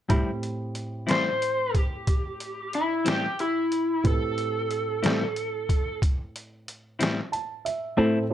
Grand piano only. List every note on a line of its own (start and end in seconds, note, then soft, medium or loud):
0.09 4.00 A2 soft
0.09 4.00 C4 soft
0.09 4.00 E4 soft
0.09 4.00 G4 soft
0.09 4.00 B5 medium
4.04 7.94 A2 soft
4.04 7.94 C4 soft
4.04 7.94 E4 soft
4.04 7.94 G4 soft
4.04 7.94 B4 soft
7.32 7.63 A5 soft
7.65 7.96 E5 soft
7.97 8.23 C4 medium
7.97 8.22 E4 medium
7.97 8.23 A4 medium
7.97 8.23 C5 medium
8.30 8.34 C4 medium
8.30 8.34 E4 medium
8.30 8.34 C5 medium